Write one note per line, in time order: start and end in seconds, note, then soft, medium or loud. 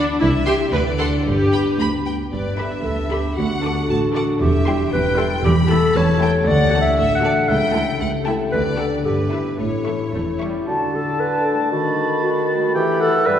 0.00 0.23 D3 soft
0.00 0.23 B3 soft
0.00 0.19 D4 medium
0.00 0.23 F#4 soft
0.00 0.22 B4 soft
0.00 0.23 D5 soft
0.20 0.62 C2 medium
0.20 0.75 C3 medium
0.20 0.28 E4 medium
0.20 0.72 E5 medium
0.46 0.75 E4 soft
0.46 0.55 G4 medium
0.46 0.54 G5 soft
0.46 0.54 C6 soft
0.72 1.14 D2 medium
0.72 1.15 D2 medium
0.72 1.28 D3 medium
0.72 0.81 B4 medium
0.72 1.25 D5 medium
0.99 2.05 D4 soft
0.99 1.28 F#4 soft
0.99 1.07 A4 medium
0.99 1.07 F#5 soft
0.99 1.07 C6 soft
1.25 1.68 G1 medium
1.25 1.68 G2 medium
1.25 2.32 G2 soft
1.25 1.78 G4 medium
1.25 2.06 B4 soft
1.53 2.49 B3 soft
1.53 1.61 G5 soft
1.53 1.61 B5 soft
1.79 2.22 D2 medium
1.79 2.22 D2 soft
1.79 3.01 G4 soft
1.79 1.88 B5 soft
2.06 2.66 D4 soft
2.06 2.14 G5 soft
2.33 2.75 G1 medium
2.33 2.74 G2 medium
2.33 3.40 G2 soft
2.33 2.86 B4 medium
2.33 2.58 D5 soft
2.50 3.19 B3 soft
2.58 2.79 D3 soft
2.58 2.79 G4 soft
2.58 3.38 E5 medium
2.58 2.78 B5 soft
2.67 3.53 D4 soft
2.85 3.27 D2 medium
2.85 3.13 A4 medium
2.85 3.40 B4 soft
3.02 3.39 G4 soft
3.11 3.31 D3 soft
3.11 3.31 G4 soft
3.11 3.39 G4 medium
3.11 3.31 B5 soft
3.20 3.40 B3 soft
3.37 3.79 D2 medium
3.37 4.43 D3 medium
3.37 3.89 F#4 medium
3.37 3.89 F#5 medium
3.55 4.23 D4 soft
3.64 3.83 D3 soft
3.64 3.83 A4 soft
3.64 3.83 A5 soft
3.64 3.83 D6 medium
3.72 4.06 A4 soft
3.89 4.30 A1 medium
3.89 4.31 A2 medium
3.89 4.40 F#4 medium
3.89 4.43 D5 soft
3.89 3.98 A5 soft
4.07 4.43 A4 soft
4.15 4.35 D3 medium
4.15 4.35 A4 medium
4.15 4.24 F#5 medium
4.15 4.35 A5 medium
4.15 4.35 D6 medium
4.24 4.43 D4 soft
4.41 4.82 E1 medium
4.41 4.82 E2 medium
4.41 5.43 E3 medium
4.41 4.92 G4 medium
4.41 4.92 E5 medium
4.58 5.26 G3 soft
4.66 4.86 G3 medium
4.66 4.86 E4 medium
4.66 4.86 G5 medium
4.66 4.86 C6 medium
4.92 5.34 E1 medium
4.92 5.33 E2 medium
4.92 5.20 B4 medium
4.92 5.46 C5 soft
4.92 5.44 G5 medium
5.10 5.78 G4 soft
5.18 5.38 G3 medium
5.18 5.38 E4 medium
5.18 5.44 A4 medium
5.18 5.38 G5 medium
5.18 5.38 C6 medium
5.27 6.49 G3 soft
5.44 5.85 E1 medium
5.44 5.85 E2 medium
5.44 6.49 E3 medium
5.44 5.56 G4 medium
5.44 5.96 B5 medium
5.62 6.29 A3 soft
5.69 5.90 A3 medium
5.69 5.90 E4 medium
5.69 5.98 A4 medium
5.69 5.89 G5 medium
5.69 5.89 A5 medium
5.79 6.12 G4 soft
5.96 6.37 E1 medium
5.96 6.37 E2 medium
5.96 6.97 A4 medium
5.96 6.49 C#5 medium
5.96 6.22 A5 medium
6.13 6.49 G4 medium
6.22 6.41 A3 medium
6.22 6.41 E4 medium
6.22 6.41 G5 medium
6.22 6.30 G5 medium
6.22 6.41 A5 medium
6.30 6.62 A3 soft
6.47 6.87 D2 medium
6.47 6.88 D2 medium
6.47 7.51 D3 medium
6.47 6.80 D5 medium
6.47 6.97 F#5 medium
6.64 7.31 A3 soft
6.72 6.91 A3 medium
6.72 6.91 F#4 medium
6.72 6.92 F#5 medium
6.72 6.92 A5 medium
6.81 7.14 F#4 soft
6.81 7.14 E5 medium
6.98 7.39 A1 medium
6.98 7.38 A2 medium
6.98 7.99 A4 soft
6.98 7.23 E5 medium
7.15 7.51 F#4 soft
7.15 7.51 F#5 medium
7.23 7.43 A3 medium
7.23 7.42 F#4 medium
7.23 7.33 D5 medium
7.23 7.43 F#5 medium
7.23 7.43 A5 medium
7.32 7.65 A3 soft
7.49 7.90 C#2 medium
7.49 8.54 C#3 medium
7.49 8.00 E5 medium
7.49 8.00 G5 medium
7.66 8.34 A3 soft
7.75 7.94 A3 medium
7.75 7.94 E4 medium
7.75 7.94 G5 medium
7.75 7.94 A5 medium
7.83 8.17 G4 soft
8.01 8.41 C#2 medium
8.01 8.42 C#2 medium
8.01 8.87 A4 soft
8.01 8.09 F#5 medium
8.18 8.54 G4 soft
8.26 8.46 A3 medium
8.26 8.46 E4 medium
8.26 8.35 E5 soft
8.26 8.45 G5 medium
8.26 8.45 A5 medium
8.35 8.69 A3 soft
8.52 8.94 D2 medium
8.52 9.08 D3 soft
8.52 8.64 B4 medium
8.52 9.04 D5 medium
8.70 9.08 A3 soft
8.78 8.98 A3 soft
8.78 8.98 F#4 soft
8.78 9.07 A4 medium
8.78 8.98 F#5 soft
8.78 8.98 A5 soft
8.87 9.08 F#4 soft
8.87 9.08 A4 soft
9.05 9.48 G1 soft
9.05 9.48 G2 medium
9.05 9.62 G2 soft
9.05 9.59 G4 medium
9.05 9.58 B4 soft
9.24 9.62 B3 soft
9.32 9.53 E3 soft
9.32 9.53 B4 soft
9.32 9.53 E5 soft
9.32 9.53 B5 soft
9.42 9.95 E4 soft
9.42 10.31 E5 soft
9.59 10.03 A1 soft
9.59 10.02 A2 medium
9.59 10.70 A2 soft
9.59 10.13 E4 soft
9.59 10.39 C#5 soft
9.79 10.49 C#4 soft
9.87 10.07 E3 soft
9.87 10.07 A4 soft
9.87 10.07 E5 soft
9.87 10.07 C#6 soft
9.96 10.70 E4 soft
10.13 10.57 E1 soft
10.13 10.56 E2 soft
10.13 10.22 A3 soft
10.13 10.70 E4 medium
10.13 10.70 C#5 soft
10.32 10.70 E5 soft
10.40 10.67 G3 soft
10.40 10.61 E5 soft
10.40 10.61 C#6 soft
10.50 10.70 C#4 soft
10.68 11.74 D3 medium
10.68 11.74 D3 soft
10.68 10.96 F#4 medium
10.68 11.68 A5 medium
10.68 12.71 A5 soft
10.86 11.54 A3 soft
10.95 11.22 A4 medium
11.03 11.36 D5 soft
11.20 12.22 F#4 soft
11.20 11.47 B4 medium
11.38 11.74 D5 soft
11.46 11.71 A4 medium
11.55 11.88 A3 soft
11.72 12.77 D#3 soft
11.72 12.74 D#3 medium
11.72 12.22 F#4 medium
11.72 12.74 B5 medium
11.89 12.57 A3 soft
12.06 12.39 B4 soft
12.23 12.77 F#4 soft
12.23 12.74 F#4 medium
12.40 13.09 B4 soft
12.58 12.77 A3 soft
12.75 13.28 E3 medium
12.75 13.29 E3 medium
12.75 13.03 G4 medium
12.75 13.02 G5 medium
12.75 13.24 B5 medium
12.92 13.08 E4 soft
13.01 13.28 A4 loud
13.01 13.28 F#5 medium
13.09 13.39 E4 soft
13.09 13.39 B4 soft
13.26 13.39 G2 medium
13.26 13.39 G3 medium
13.26 13.39 B4 medium
13.26 13.39 E5 medium
13.26 13.39 B5 medium